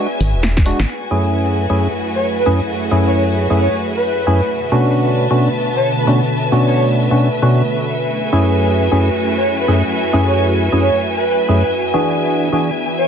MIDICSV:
0, 0, Header, 1, 7, 480
1, 0, Start_track
1, 0, Key_signature, 3, "minor"
1, 0, Tempo, 451128
1, 941, Time_signature, 4, 2, 24, 8
1, 13914, End_track
2, 0, Start_track
2, 0, Title_t, "String section"
2, 0, Program_c, 0, 48
2, 0, Note_on_c, 0, 71, 76
2, 0, Note_on_c, 0, 76, 80
2, 0, Note_on_c, 0, 80, 79
2, 940, Note_off_c, 0, 76, 0
2, 941, Note_on_c, 0, 66, 61
2, 1196, Note_on_c, 0, 76, 67
2, 4780, Note_off_c, 0, 80, 0
2, 5243, Note_on_c, 0, 81, 69
2, 6221, Note_off_c, 0, 66, 0
2, 8376, Note_on_c, 0, 66, 82
2, 8379, Note_off_c, 0, 81, 0
2, 8516, Note_on_c, 0, 80, 72
2, 13297, Note_off_c, 0, 66, 0
2, 13914, Note_off_c, 0, 71, 0
2, 13914, Note_off_c, 0, 76, 0
2, 13914, Note_off_c, 0, 80, 0
2, 13914, End_track
3, 0, Start_track
3, 0, Title_t, "Soft synth lead"
3, 0, Program_c, 1, 80
3, 2285, Note_on_c, 1, 73, 84
3, 2405, Note_off_c, 1, 73, 0
3, 2528, Note_on_c, 1, 71, 86
3, 2647, Note_off_c, 1, 71, 0
3, 3247, Note_on_c, 1, 73, 81
3, 3306, Note_off_c, 1, 73, 0
3, 3343, Note_on_c, 1, 73, 71
3, 3436, Note_off_c, 1, 73, 0
3, 3821, Note_on_c, 1, 73, 89
3, 3984, Note_off_c, 1, 73, 0
3, 4208, Note_on_c, 1, 71, 85
3, 4282, Note_off_c, 1, 71, 0
3, 4299, Note_on_c, 1, 71, 87
3, 4780, Note_off_c, 1, 71, 0
3, 6127, Note_on_c, 1, 73, 89
3, 6246, Note_off_c, 1, 73, 0
3, 6365, Note_on_c, 1, 71, 88
3, 6485, Note_off_c, 1, 71, 0
3, 7087, Note_on_c, 1, 73, 79
3, 7146, Note_off_c, 1, 73, 0
3, 7178, Note_on_c, 1, 73, 75
3, 7273, Note_off_c, 1, 73, 0
3, 9967, Note_on_c, 1, 73, 87
3, 10086, Note_off_c, 1, 73, 0
3, 10206, Note_on_c, 1, 71, 84
3, 10326, Note_off_c, 1, 71, 0
3, 10926, Note_on_c, 1, 73, 81
3, 10986, Note_off_c, 1, 73, 0
3, 11023, Note_on_c, 1, 73, 75
3, 11115, Note_off_c, 1, 73, 0
3, 11501, Note_on_c, 1, 73, 90
3, 11664, Note_off_c, 1, 73, 0
3, 11886, Note_on_c, 1, 71, 82
3, 11961, Note_off_c, 1, 71, 0
3, 11982, Note_on_c, 1, 71, 94
3, 12461, Note_off_c, 1, 71, 0
3, 13805, Note_on_c, 1, 73, 84
3, 13914, Note_off_c, 1, 73, 0
3, 13914, End_track
4, 0, Start_track
4, 0, Title_t, "String machine"
4, 0, Program_c, 2, 50
4, 0, Note_on_c, 2, 59, 82
4, 0, Note_on_c, 2, 62, 77
4, 0, Note_on_c, 2, 66, 79
4, 0, Note_on_c, 2, 68, 90
4, 901, Note_off_c, 2, 62, 0
4, 901, Note_off_c, 2, 68, 0
4, 902, Note_off_c, 2, 59, 0
4, 902, Note_off_c, 2, 66, 0
4, 939, Note_on_c, 2, 42, 79
4, 939, Note_on_c, 2, 64, 71
4, 939, Note_on_c, 2, 68, 87
4, 939, Note_on_c, 2, 73, 70
4, 940, Note_on_c, 2, 57, 69
4, 4741, Note_off_c, 2, 42, 0
4, 4741, Note_off_c, 2, 57, 0
4, 4741, Note_off_c, 2, 64, 0
4, 4741, Note_off_c, 2, 68, 0
4, 4777, Note_on_c, 2, 47, 79
4, 4777, Note_on_c, 2, 66, 89
4, 4778, Note_on_c, 2, 50, 69
4, 4778, Note_on_c, 2, 57, 72
4, 8337, Note_off_c, 2, 73, 0
4, 8342, Note_off_c, 2, 47, 0
4, 8342, Note_off_c, 2, 66, 0
4, 8343, Note_off_c, 2, 50, 0
4, 8379, Note_on_c, 2, 42, 79
4, 8379, Note_on_c, 2, 61, 70
4, 8379, Note_on_c, 2, 64, 72
4, 8379, Note_on_c, 2, 68, 86
4, 10280, Note_off_c, 2, 68, 0
4, 10296, Note_on_c, 2, 66, 84
4, 12416, Note_off_c, 2, 57, 0
4, 12418, Note_off_c, 2, 64, 0
4, 12419, Note_off_c, 2, 42, 0
4, 12419, Note_off_c, 2, 61, 0
4, 12462, Note_on_c, 2, 52, 79
4, 12462, Note_on_c, 2, 59, 73
4, 12462, Note_on_c, 2, 68, 86
4, 12464, Note_on_c, 2, 62, 72
4, 13914, Note_off_c, 2, 52, 0
4, 13914, Note_off_c, 2, 59, 0
4, 13914, Note_off_c, 2, 62, 0
4, 13914, Note_off_c, 2, 66, 0
4, 13914, Note_off_c, 2, 68, 0
4, 13914, End_track
5, 0, Start_track
5, 0, Title_t, "Synth stab"
5, 0, Program_c, 3, 62
5, 700, Note_on_c, 3, 56, 83
5, 700, Note_on_c, 3, 62, 79
5, 700, Note_on_c, 3, 66, 97
5, 849, Note_off_c, 3, 56, 0
5, 849, Note_off_c, 3, 62, 0
5, 849, Note_off_c, 3, 66, 0
5, 1180, Note_on_c, 3, 42, 89
5, 1180, Note_on_c, 3, 61, 78
5, 1181, Note_on_c, 3, 57, 75
5, 1181, Note_on_c, 3, 64, 79
5, 1181, Note_on_c, 3, 68, 96
5, 1772, Note_off_c, 3, 42, 0
5, 1772, Note_off_c, 3, 57, 0
5, 1772, Note_off_c, 3, 61, 0
5, 1772, Note_off_c, 3, 64, 0
5, 1772, Note_off_c, 3, 68, 0
5, 1806, Note_on_c, 3, 42, 75
5, 1806, Note_on_c, 3, 57, 67
5, 1806, Note_on_c, 3, 61, 68
5, 1807, Note_on_c, 3, 64, 68
5, 1807, Note_on_c, 3, 68, 82
5, 1994, Note_off_c, 3, 42, 0
5, 1994, Note_off_c, 3, 57, 0
5, 1994, Note_off_c, 3, 61, 0
5, 1994, Note_off_c, 3, 64, 0
5, 1994, Note_off_c, 3, 68, 0
5, 2619, Note_on_c, 3, 42, 80
5, 2619, Note_on_c, 3, 57, 72
5, 2619, Note_on_c, 3, 61, 72
5, 2619, Note_on_c, 3, 64, 74
5, 2619, Note_on_c, 3, 68, 86
5, 2769, Note_off_c, 3, 42, 0
5, 2769, Note_off_c, 3, 57, 0
5, 2769, Note_off_c, 3, 61, 0
5, 2769, Note_off_c, 3, 64, 0
5, 2769, Note_off_c, 3, 68, 0
5, 3100, Note_on_c, 3, 57, 78
5, 3100, Note_on_c, 3, 61, 76
5, 3100, Note_on_c, 3, 64, 78
5, 3101, Note_on_c, 3, 42, 85
5, 3101, Note_on_c, 3, 68, 94
5, 3692, Note_off_c, 3, 42, 0
5, 3692, Note_off_c, 3, 57, 0
5, 3692, Note_off_c, 3, 61, 0
5, 3692, Note_off_c, 3, 64, 0
5, 3692, Note_off_c, 3, 68, 0
5, 3726, Note_on_c, 3, 42, 77
5, 3726, Note_on_c, 3, 68, 87
5, 3727, Note_on_c, 3, 57, 71
5, 3727, Note_on_c, 3, 61, 69
5, 3727, Note_on_c, 3, 64, 68
5, 3914, Note_off_c, 3, 42, 0
5, 3914, Note_off_c, 3, 57, 0
5, 3914, Note_off_c, 3, 61, 0
5, 3914, Note_off_c, 3, 64, 0
5, 3914, Note_off_c, 3, 68, 0
5, 4540, Note_on_c, 3, 42, 81
5, 4540, Note_on_c, 3, 57, 73
5, 4540, Note_on_c, 3, 61, 74
5, 4540, Note_on_c, 3, 64, 73
5, 4540, Note_on_c, 3, 68, 87
5, 4689, Note_off_c, 3, 42, 0
5, 4689, Note_off_c, 3, 57, 0
5, 4689, Note_off_c, 3, 61, 0
5, 4689, Note_off_c, 3, 64, 0
5, 4689, Note_off_c, 3, 68, 0
5, 5019, Note_on_c, 3, 47, 82
5, 5019, Note_on_c, 3, 57, 78
5, 5019, Note_on_c, 3, 61, 77
5, 5019, Note_on_c, 3, 62, 78
5, 5020, Note_on_c, 3, 66, 96
5, 5611, Note_off_c, 3, 47, 0
5, 5611, Note_off_c, 3, 57, 0
5, 5611, Note_off_c, 3, 61, 0
5, 5611, Note_off_c, 3, 62, 0
5, 5612, Note_off_c, 3, 66, 0
5, 5645, Note_on_c, 3, 57, 70
5, 5646, Note_on_c, 3, 47, 76
5, 5646, Note_on_c, 3, 61, 70
5, 5646, Note_on_c, 3, 62, 69
5, 5646, Note_on_c, 3, 66, 84
5, 5833, Note_off_c, 3, 57, 0
5, 5833, Note_off_c, 3, 61, 0
5, 5833, Note_off_c, 3, 62, 0
5, 5834, Note_off_c, 3, 47, 0
5, 5834, Note_off_c, 3, 66, 0
5, 6460, Note_on_c, 3, 47, 81
5, 6460, Note_on_c, 3, 57, 76
5, 6460, Note_on_c, 3, 61, 77
5, 6460, Note_on_c, 3, 62, 76
5, 6461, Note_on_c, 3, 66, 92
5, 6609, Note_off_c, 3, 47, 0
5, 6609, Note_off_c, 3, 57, 0
5, 6609, Note_off_c, 3, 61, 0
5, 6609, Note_off_c, 3, 62, 0
5, 6610, Note_off_c, 3, 66, 0
5, 6938, Note_on_c, 3, 61, 79
5, 6939, Note_on_c, 3, 47, 85
5, 6939, Note_on_c, 3, 57, 77
5, 6939, Note_on_c, 3, 62, 78
5, 6939, Note_on_c, 3, 66, 92
5, 7531, Note_off_c, 3, 47, 0
5, 7531, Note_off_c, 3, 57, 0
5, 7531, Note_off_c, 3, 61, 0
5, 7531, Note_off_c, 3, 62, 0
5, 7531, Note_off_c, 3, 66, 0
5, 7566, Note_on_c, 3, 57, 70
5, 7566, Note_on_c, 3, 61, 69
5, 7566, Note_on_c, 3, 62, 67
5, 7566, Note_on_c, 3, 66, 83
5, 7567, Note_on_c, 3, 47, 75
5, 7753, Note_off_c, 3, 57, 0
5, 7753, Note_off_c, 3, 61, 0
5, 7753, Note_off_c, 3, 62, 0
5, 7754, Note_off_c, 3, 47, 0
5, 7754, Note_off_c, 3, 66, 0
5, 7897, Note_on_c, 3, 62, 84
5, 7898, Note_on_c, 3, 47, 88
5, 7898, Note_on_c, 3, 57, 83
5, 7898, Note_on_c, 3, 61, 83
5, 7898, Note_on_c, 3, 66, 98
5, 8105, Note_off_c, 3, 47, 0
5, 8105, Note_off_c, 3, 57, 0
5, 8105, Note_off_c, 3, 61, 0
5, 8105, Note_off_c, 3, 62, 0
5, 8106, Note_off_c, 3, 66, 0
5, 8859, Note_on_c, 3, 42, 83
5, 8859, Note_on_c, 3, 57, 77
5, 8859, Note_on_c, 3, 61, 76
5, 8859, Note_on_c, 3, 64, 82
5, 8859, Note_on_c, 3, 68, 95
5, 9451, Note_off_c, 3, 42, 0
5, 9451, Note_off_c, 3, 57, 0
5, 9451, Note_off_c, 3, 61, 0
5, 9451, Note_off_c, 3, 64, 0
5, 9451, Note_off_c, 3, 68, 0
5, 9487, Note_on_c, 3, 42, 78
5, 9487, Note_on_c, 3, 57, 69
5, 9487, Note_on_c, 3, 61, 70
5, 9487, Note_on_c, 3, 64, 68
5, 9487, Note_on_c, 3, 68, 81
5, 9674, Note_off_c, 3, 42, 0
5, 9674, Note_off_c, 3, 57, 0
5, 9674, Note_off_c, 3, 61, 0
5, 9674, Note_off_c, 3, 64, 0
5, 9674, Note_off_c, 3, 68, 0
5, 10300, Note_on_c, 3, 42, 83
5, 10300, Note_on_c, 3, 57, 75
5, 10300, Note_on_c, 3, 61, 77
5, 10300, Note_on_c, 3, 64, 78
5, 10300, Note_on_c, 3, 68, 89
5, 10449, Note_off_c, 3, 42, 0
5, 10449, Note_off_c, 3, 57, 0
5, 10449, Note_off_c, 3, 61, 0
5, 10449, Note_off_c, 3, 64, 0
5, 10449, Note_off_c, 3, 68, 0
5, 10780, Note_on_c, 3, 42, 86
5, 10780, Note_on_c, 3, 57, 80
5, 10780, Note_on_c, 3, 68, 96
5, 10781, Note_on_c, 3, 61, 78
5, 10781, Note_on_c, 3, 64, 78
5, 11372, Note_off_c, 3, 42, 0
5, 11372, Note_off_c, 3, 57, 0
5, 11372, Note_off_c, 3, 61, 0
5, 11372, Note_off_c, 3, 64, 0
5, 11372, Note_off_c, 3, 68, 0
5, 11409, Note_on_c, 3, 42, 74
5, 11409, Note_on_c, 3, 57, 69
5, 11409, Note_on_c, 3, 61, 68
5, 11409, Note_on_c, 3, 64, 71
5, 11409, Note_on_c, 3, 68, 83
5, 11595, Note_off_c, 3, 42, 0
5, 11595, Note_off_c, 3, 57, 0
5, 11595, Note_off_c, 3, 61, 0
5, 11595, Note_off_c, 3, 64, 0
5, 11595, Note_off_c, 3, 68, 0
5, 12220, Note_on_c, 3, 64, 73
5, 12220, Note_on_c, 3, 68, 92
5, 12221, Note_on_c, 3, 42, 82
5, 12221, Note_on_c, 3, 57, 75
5, 12221, Note_on_c, 3, 61, 73
5, 12369, Note_off_c, 3, 64, 0
5, 12369, Note_off_c, 3, 68, 0
5, 12370, Note_off_c, 3, 42, 0
5, 12370, Note_off_c, 3, 57, 0
5, 12370, Note_off_c, 3, 61, 0
5, 12701, Note_on_c, 3, 62, 79
5, 12701, Note_on_c, 3, 66, 79
5, 12701, Note_on_c, 3, 68, 97
5, 12702, Note_on_c, 3, 52, 86
5, 13292, Note_off_c, 3, 62, 0
5, 13292, Note_off_c, 3, 66, 0
5, 13292, Note_off_c, 3, 68, 0
5, 13293, Note_off_c, 3, 52, 0
5, 13328, Note_on_c, 3, 52, 78
5, 13328, Note_on_c, 3, 62, 70
5, 13328, Note_on_c, 3, 66, 67
5, 13328, Note_on_c, 3, 68, 86
5, 13514, Note_off_c, 3, 52, 0
5, 13514, Note_off_c, 3, 62, 0
5, 13514, Note_off_c, 3, 66, 0
5, 13514, Note_off_c, 3, 68, 0
5, 13914, End_track
6, 0, Start_track
6, 0, Title_t, "FM bass"
6, 0, Program_c, 4, 39
6, 219, Note_on_c, 4, 32, 89
6, 368, Note_on_c, 4, 28, 76
6, 384, Note_off_c, 4, 32, 0
6, 780, Note_off_c, 4, 28, 0
6, 848, Note_on_c, 4, 32, 87
6, 914, Note_off_c, 4, 32, 0
6, 13914, End_track
7, 0, Start_track
7, 0, Title_t, "Drums"
7, 219, Note_on_c, 9, 46, 107
7, 325, Note_off_c, 9, 46, 0
7, 459, Note_on_c, 9, 38, 114
7, 459, Note_on_c, 9, 42, 69
7, 566, Note_off_c, 9, 38, 0
7, 566, Note_off_c, 9, 42, 0
7, 606, Note_on_c, 9, 38, 70
7, 607, Note_on_c, 9, 36, 100
7, 699, Note_on_c, 9, 46, 113
7, 712, Note_off_c, 9, 38, 0
7, 713, Note_off_c, 9, 36, 0
7, 806, Note_off_c, 9, 46, 0
7, 847, Note_on_c, 9, 38, 92
7, 953, Note_off_c, 9, 38, 0
7, 13914, End_track
0, 0, End_of_file